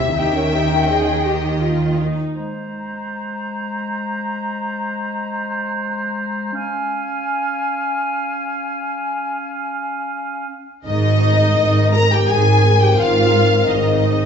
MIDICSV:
0, 0, Header, 1, 10, 480
1, 0, Start_track
1, 0, Key_signature, -4, "major"
1, 0, Tempo, 729927
1, 110, Time_signature, 3, 2, 24, 8
1, 1548, Tempo, 705053
1, 3468, Tempo, 690449
1, 5388, Tempo, 729040
1, 7788, Tempo, 699301
1, 9623, End_track
2, 0, Start_track
2, 0, Title_t, "Flute"
2, 0, Program_c, 0, 73
2, 1555, Note_on_c, 0, 82, 38
2, 4397, Note_off_c, 0, 82, 0
2, 4427, Note_on_c, 0, 80, 49
2, 7066, Note_off_c, 0, 80, 0
2, 9623, End_track
3, 0, Start_track
3, 0, Title_t, "Violin section"
3, 0, Program_c, 1, 48
3, 0, Note_on_c, 1, 76, 61
3, 107, Note_on_c, 1, 79, 62
3, 111, Note_off_c, 1, 76, 0
3, 1310, Note_off_c, 1, 79, 0
3, 7315, Note_on_c, 1, 75, 70
3, 8009, Note_off_c, 1, 75, 0
3, 8034, Note_on_c, 1, 82, 67
3, 8155, Note_off_c, 1, 82, 0
3, 8171, Note_on_c, 1, 79, 61
3, 8275, Note_on_c, 1, 80, 69
3, 8283, Note_off_c, 1, 79, 0
3, 8632, Note_off_c, 1, 80, 0
3, 8642, Note_on_c, 1, 79, 58
3, 8756, Note_off_c, 1, 79, 0
3, 8760, Note_on_c, 1, 77, 74
3, 9225, Note_off_c, 1, 77, 0
3, 9233, Note_on_c, 1, 75, 54
3, 9623, Note_off_c, 1, 75, 0
3, 9623, End_track
4, 0, Start_track
4, 0, Title_t, "Violin section"
4, 0, Program_c, 2, 48
4, 0, Note_on_c, 2, 76, 64
4, 109, Note_off_c, 2, 76, 0
4, 116, Note_on_c, 2, 76, 71
4, 588, Note_off_c, 2, 76, 0
4, 601, Note_on_c, 2, 75, 55
4, 1315, Note_off_c, 2, 75, 0
4, 7321, Note_on_c, 2, 75, 85
4, 8012, Note_off_c, 2, 75, 0
4, 8035, Note_on_c, 2, 82, 80
4, 8153, Note_off_c, 2, 82, 0
4, 8166, Note_on_c, 2, 79, 74
4, 8276, Note_on_c, 2, 80, 82
4, 8280, Note_off_c, 2, 79, 0
4, 8633, Note_off_c, 2, 80, 0
4, 8639, Note_on_c, 2, 79, 71
4, 8755, Note_off_c, 2, 79, 0
4, 8765, Note_on_c, 2, 77, 80
4, 9236, Note_off_c, 2, 77, 0
4, 9238, Note_on_c, 2, 75, 62
4, 9623, Note_off_c, 2, 75, 0
4, 9623, End_track
5, 0, Start_track
5, 0, Title_t, "Oboe"
5, 0, Program_c, 3, 68
5, 1549, Note_on_c, 3, 72, 37
5, 4394, Note_off_c, 3, 72, 0
5, 4425, Note_on_c, 3, 77, 50
5, 7065, Note_off_c, 3, 77, 0
5, 9623, End_track
6, 0, Start_track
6, 0, Title_t, "Viola section"
6, 0, Program_c, 4, 48
6, 0, Note_on_c, 4, 60, 41
6, 0, Note_on_c, 4, 67, 42
6, 105, Note_off_c, 4, 67, 0
6, 112, Note_off_c, 4, 60, 0
6, 112, Note_on_c, 4, 63, 47
6, 113, Note_on_c, 4, 67, 43
6, 224, Note_off_c, 4, 63, 0
6, 224, Note_off_c, 4, 67, 0
6, 228, Note_on_c, 4, 61, 41
6, 229, Note_on_c, 4, 70, 38
6, 351, Note_off_c, 4, 61, 0
6, 352, Note_off_c, 4, 70, 0
6, 353, Note_on_c, 4, 67, 43
6, 354, Note_on_c, 4, 63, 44
6, 474, Note_off_c, 4, 63, 0
6, 474, Note_off_c, 4, 67, 0
6, 479, Note_on_c, 4, 61, 43
6, 481, Note_on_c, 4, 70, 43
6, 588, Note_on_c, 4, 68, 60
6, 597, Note_off_c, 4, 61, 0
6, 598, Note_off_c, 4, 70, 0
6, 815, Note_off_c, 4, 68, 0
6, 829, Note_on_c, 4, 67, 51
6, 1069, Note_on_c, 4, 65, 52
6, 1070, Note_off_c, 4, 67, 0
6, 1305, Note_on_c, 4, 63, 50
6, 1310, Note_off_c, 4, 65, 0
6, 1545, Note_off_c, 4, 63, 0
6, 7312, Note_on_c, 4, 63, 72
6, 8007, Note_off_c, 4, 63, 0
6, 8030, Note_on_c, 4, 70, 70
6, 8153, Note_off_c, 4, 70, 0
6, 8161, Note_on_c, 4, 67, 62
6, 8275, Note_on_c, 4, 68, 66
6, 8276, Note_off_c, 4, 67, 0
6, 8633, Note_off_c, 4, 68, 0
6, 8638, Note_on_c, 4, 67, 58
6, 8754, Note_off_c, 4, 67, 0
6, 8756, Note_on_c, 4, 65, 66
6, 9223, Note_off_c, 4, 65, 0
6, 9229, Note_on_c, 4, 63, 51
6, 9623, Note_off_c, 4, 63, 0
6, 9623, End_track
7, 0, Start_track
7, 0, Title_t, "French horn section"
7, 0, Program_c, 5, 60
7, 7308, Note_on_c, 5, 60, 62
7, 7311, Note_on_c, 5, 70, 63
7, 9623, Note_off_c, 5, 60, 0
7, 9623, Note_off_c, 5, 70, 0
7, 9623, End_track
8, 0, Start_track
8, 0, Title_t, "Clarinet"
8, 0, Program_c, 6, 71
8, 1543, Note_on_c, 6, 56, 40
8, 4391, Note_off_c, 6, 56, 0
8, 4407, Note_on_c, 6, 61, 54
8, 7056, Note_off_c, 6, 61, 0
8, 9623, End_track
9, 0, Start_track
9, 0, Title_t, "Cello section"
9, 0, Program_c, 7, 48
9, 0, Note_on_c, 7, 48, 70
9, 86, Note_off_c, 7, 48, 0
9, 113, Note_on_c, 7, 51, 53
9, 1391, Note_off_c, 7, 51, 0
9, 7312, Note_on_c, 7, 44, 72
9, 7733, Note_off_c, 7, 44, 0
9, 7788, Note_on_c, 7, 44, 62
9, 8218, Note_off_c, 7, 44, 0
9, 8275, Note_on_c, 7, 44, 62
9, 8695, Note_off_c, 7, 44, 0
9, 8754, Note_on_c, 7, 44, 69
9, 9174, Note_off_c, 7, 44, 0
9, 9231, Note_on_c, 7, 44, 62
9, 9623, Note_off_c, 7, 44, 0
9, 9623, End_track
10, 0, Start_track
10, 0, Title_t, "Double bass section"
10, 0, Program_c, 8, 48
10, 0, Note_on_c, 8, 36, 65
10, 82, Note_off_c, 8, 36, 0
10, 105, Note_on_c, 8, 39, 50
10, 1387, Note_off_c, 8, 39, 0
10, 7312, Note_on_c, 8, 32, 65
10, 7732, Note_off_c, 8, 32, 0
10, 7791, Note_on_c, 8, 32, 56
10, 8219, Note_off_c, 8, 32, 0
10, 8281, Note_on_c, 8, 32, 61
10, 8698, Note_off_c, 8, 32, 0
10, 8751, Note_on_c, 8, 32, 62
10, 9173, Note_off_c, 8, 32, 0
10, 9229, Note_on_c, 8, 32, 57
10, 9623, Note_off_c, 8, 32, 0
10, 9623, End_track
0, 0, End_of_file